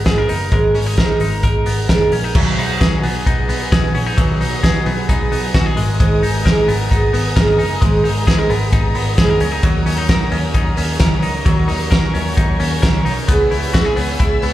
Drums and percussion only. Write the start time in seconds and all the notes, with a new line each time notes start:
0.06 kick, snare, closed hi-hat
0.29 open hi-hat
0.52 kick, closed hi-hat
0.75 open hi-hat
0.97 kick, snare, closed hi-hat
1.20 open hi-hat
1.43 kick, closed hi-hat
1.66 open hi-hat
1.89 kick, snare, closed hi-hat
2.12 open hi-hat
2.35 kick, crash
2.58 open hi-hat
2.81 kick, snare, hi-hat pedal, ride
3.03 open hi-hat
3.26 kick, hi-hat pedal, ride
3.49 open hi-hat
3.72 kick, snare, hi-hat pedal, ride
3.95 open hi-hat
4.18 kick, hi-hat pedal, ride
4.41 open hi-hat
4.64 kick, snare, hi-hat pedal, ride
4.86 open hi-hat
5.09 kick, hi-hat pedal, ride
5.32 open hi-hat
5.54 kick, snare, hi-hat pedal, ride
5.77 open hi-hat
6.00 kick, hi-hat pedal, ride
6.23 open hi-hat
6.46 kick, snare, hi-hat pedal, ride
6.69 open hi-hat
6.91 kick, hi-hat pedal, ride
7.14 open hi-hat
7.36 kick, snare, hi-hat pedal, ride
7.59 open hi-hat
7.82 kick, hi-hat pedal, ride
8.05 open hi-hat
8.27 kick, snare, hi-hat pedal, ride
8.50 open hi-hat
8.73 kick, hi-hat pedal, ride
8.95 open hi-hat
9.18 kick, snare, hi-hat pedal, ride
9.40 open hi-hat
9.63 kick, hi-hat pedal, ride
9.86 open hi-hat
10.09 kick, snare, hi-hat pedal, ride
10.32 open hi-hat
10.54 kick, hi-hat pedal, ride
10.77 open hi-hat
10.99 kick, snare, hi-hat pedal, ride
11.22 open hi-hat
11.46 kick, hi-hat pedal, ride
11.69 open hi-hat
11.92 kick, snare, hi-hat pedal, ride
12.15 open hi-hat
12.37 kick, hi-hat pedal, ride
12.60 open hi-hat
12.83 kick, snare, hi-hat pedal, ride
13.06 open hi-hat
13.28 kick, hi-hat pedal, ride
13.52 open hi-hat
13.74 kick, snare, hi-hat pedal, ride
13.97 open hi-hat
14.20 kick, hi-hat pedal, ride
14.42 open hi-hat